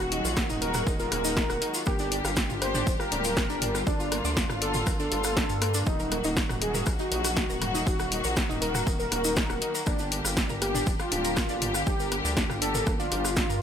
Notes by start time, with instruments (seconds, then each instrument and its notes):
Already playing: analog synth bass D#1, string section D#3 F#3 G#3 F#4, analog synth lead F#4
0.12 synth arpeggio sound D#4 D#5, open hi-hat
0.24 analog synth bass A#1, synth arpeggio sound F4 F5, maracas
0.36 synth arpeggio sound A#3 A#4, kick, cross-stick, snare, maracas
0.49 analog synth bass D#1, synth arpeggio sound D#4 D#5, mid tom, maracas
0.61 synth arpeggio sound D#4 D#5, analog synth lead A#4, open hi-hat
0.74 synth arpeggio sound F#4 F#5, cross-stick, mid tom, maracas
0.87 analog synth bass D#1, synth arpeggio sound D#4 D#5, kick, maracas
1.00 synth arpeggio sound F4 F5, analog synth lead A#4, maracas
1.12 analog synth bass D#1, synth arpeggio sound A#3 A#4, cross-stick, open hi-hat
1.24 synth arpeggio sound D#4 D#5, maracas
1.37 synth arpeggio sound D#4 D#5, kick, snare, maracas
1.49 analog synth bass D#1, synth arpeggio sound F#4 F#5, cross-stick, maracas
1.62 synth arpeggio sound D#4 D#5, open hi-hat
1.74 synth arpeggio sound F4 F5, maracas
1.86 analog synth bass G1, string section D3 G3 A#3 G4, synth arpeggio sound A#3 A#4, analog synth lead G4, kick, cross-stick, maracas
1.99 synth arpeggio sound D4 D5, maracas
2.12 synth arpeggio sound D4 D5, open hi-hat
2.25 analog synth bass G1, synth arpeggio sound F4 F5, cross-stick, maracas
2.36 synth arpeggio sound D4 D5, kick, snare, maracas
2.50 analog synth bass G1, synth arpeggio sound F4 F5, mid tom, maracas
2.62 synth arpeggio sound A#3 A#4, analog synth lead C5, cross-stick, open hi-hat
2.75 synth arpeggio sound D4 D5, mid tom, maracas
2.87 analog synth bass D1, synth arpeggio sound D4 D5, kick, maracas
2.99 synth arpeggio sound F4 F5, analog synth lead A#4, cross-stick, maracas
3.12 analog synth bass D1, synth arpeggio sound D4 D5, open hi-hat
3.24 synth arpeggio sound F4 F5, open hi-hat, maracas
3.37 synth arpeggio sound A#3 A#4, kick, cross-stick, snare, maracas
3.49 analog synth bass G1, synth arpeggio sound D4 D5, maracas
3.62 synth arpeggio sound D4 D5, mid tom, open hi-hat
3.75 synth arpeggio sound F4 F5, cross-stick, maracas
3.87 analog synth bass G1, analog synth lead D4, synth arpeggio sound D4 D5, string section F4, kick, maracas
4.00 synth arpeggio sound F4 F5, maracas
4.12 synth arpeggio sound A#3 A#4, cross-stick, open hi-hat
4.24 analog synth bass D2, synth arpeggio sound D4 D5, maracas
4.37 synth arpeggio sound D4 D5, kick, snare, maracas
4.49 analog synth bass G1, synth arpeggio sound F4 F5, cross-stick, mid tom, maracas
4.62 synth arpeggio sound D4 D5, analog synth lead A4, open hi-hat
4.74 synth arpeggio sound F4 F5, mid tom, maracas
4.87 analog synth bass G1, synth arpeggio sound A#3 A#4, kick, cross-stick, maracas
4.99 synth arpeggio sound D4 D5, analog synth lead A4, maracas
5.12 analog synth bass G1, synth arpeggio sound D4 D5, open hi-hat
5.24 synth arpeggio sound F4 F5, cross-stick, maracas
5.37 synth arpeggio sound D4 D5, kick, snare, maracas
5.49 analog synth bass G2, synth arpeggio sound F4 F5, maracas
5.62 synth arpeggio sound A#3 A#4, cross-stick, open hi-hat
5.74 synth arpeggio sound D4 D5, maracas
5.86 analog synth bass D#1, string section D#3 F#3 F#4, analog synth lead D#4, synth arpeggio sound D#4 D#5, kick, maracas
6.00 synth arpeggio sound A#4 A#5, maracas
6.12 synth arpeggio sound A#3 A#4, cross-stick, open hi-hat
6.24 analog synth bass D#1, synth arpeggio sound D#4 D#5, maracas
6.37 synth arpeggio sound D#4 D#5, kick, snare, maracas
6.49 analog synth bass D#1, synth arpeggio sound F#4 F#5, cross-stick, mid tom, maracas
6.62 synth arpeggio sound D#4 D#5, analog synth lead G#4, open hi-hat
6.74 synth arpeggio sound A#4 A#5, mid tom, maracas
6.86 analog synth bass A#1, synth arpeggio sound A#3 A#4, kick, cross-stick, maracas
6.99 synth arpeggio sound D#4 D#5, analog synth lead F#4, maracas
7.11 analog synth bass A#1, synth arpeggio sound D#4 D#5, open hi-hat
7.24 synth arpeggio sound F#4 F#5, cross-stick, open hi-hat, maracas
7.37 synth arpeggio sound D#4 D#5, kick, snare, maracas
7.50 analog synth bass D#1, synth arpeggio sound A#4 A#5, maracas
7.62 synth arpeggio sound A#3 A#4, cross-stick, mid tom, open hi-hat
7.75 synth arpeggio sound D#4 D#5, maracas
7.87 analog synth bass D#1, synth arpeggio sound D#4 D#5, analog synth lead F#4, kick, maracas
7.99 synth arpeggio sound F#4 F#5, cross-stick, maracas
8.12 synth arpeggio sound D#4 D#5, open hi-hat
8.24 analog synth bass A#1, synth arpeggio sound A#4 A#5, maracas
8.36 synth arpeggio sound A#3 A#4, kick, cross-stick, snare, maracas
8.49 analog synth bass D#1, synth arpeggio sound D#4 D#5, mid tom, maracas
8.62 synth arpeggio sound D#4 D#5, analog synth lead A#4, open hi-hat
8.75 synth arpeggio sound F#4 F#5, cross-stick, mid tom, maracas
8.87 analog synth bass D#1, synth arpeggio sound D#4 D#5, kick, maracas
8.99 analog synth lead A#4, synth arpeggio sound A#4 A#5, maracas
9.12 analog synth bass D#1, synth arpeggio sound A#3 A#4, cross-stick, open hi-hat
9.24 synth arpeggio sound D#4 D#5, maracas
9.36 synth arpeggio sound D#4 D#5, kick, snare, maracas
9.50 analog synth bass D#1, synth arpeggio sound F#4 F#5, cross-stick, maracas
9.62 synth arpeggio sound D#4 D#5, open hi-hat
9.75 synth arpeggio sound A#4 A#5, maracas
9.86 analog synth bass G1, string section D3 G3 G4, synth arpeggio sound A#3 A#4, analog synth lead D4, kick, cross-stick, maracas
9.99 synth arpeggio sound D4 D5, maracas
10.12 synth arpeggio sound D4 D5, open hi-hat
10.25 analog synth bass G1, synth arpeggio sound F4 F5, cross-stick, maracas
10.37 synth arpeggio sound D4 D5, kick, snare, maracas
10.49 analog synth bass G1, synth arpeggio sound A#4 A#5, mid tom, maracas
10.62 synth arpeggio sound A#3 A#4, analog synth lead G4, cross-stick, open hi-hat
10.75 synth arpeggio sound D4 D5, mid tom, maracas
10.87 analog synth bass D1, synth arpeggio sound D4 D5, kick, maracas
10.99 synth arpeggio sound F4 F5, analog synth lead F4, cross-stick, maracas
11.12 analog synth bass D1, synth arpeggio sound D4 D5, open hi-hat
11.25 synth arpeggio sound A#4 A#5, open hi-hat, maracas
11.37 synth arpeggio sound A#3 A#4, kick, cross-stick, snare, maracas
11.49 analog synth bass G1, synth arpeggio sound D4 D5, maracas
11.62 synth arpeggio sound D4 D5, mid tom, open hi-hat
11.75 synth arpeggio sound F4 F5, cross-stick, maracas
11.87 analog synth bass G1, synth arpeggio sound D4 D5, analog synth lead G4, kick, maracas
12.00 synth arpeggio sound A#4 A#5, maracas
12.12 synth arpeggio sound A#3 A#4, cross-stick, open hi-hat
12.24 analog synth bass D2, synth arpeggio sound D4 D5, maracas
12.37 synth arpeggio sound D4 D5, kick, snare, maracas
12.49 analog synth bass G1, synth arpeggio sound F4 F5, cross-stick, mid tom, maracas
12.62 synth arpeggio sound D4 D5, analog synth lead A4, open hi-hat
12.74 synth arpeggio sound A#4 A#5, mid tom, maracas
12.86 analog synth bass G1, synth arpeggio sound A#3 A#4, kick, cross-stick, maracas
12.99 synth arpeggio sound D4 D5, analog synth lead F4, maracas
13.12 analog synth bass G1, synth arpeggio sound D4 D5, open hi-hat
13.25 synth arpeggio sound F4 F5, cross-stick, maracas
13.36 synth arpeggio sound D4 D5, kick, snare, maracas
13.50 analog synth bass G2, synth arpeggio sound A#4 A#5, maracas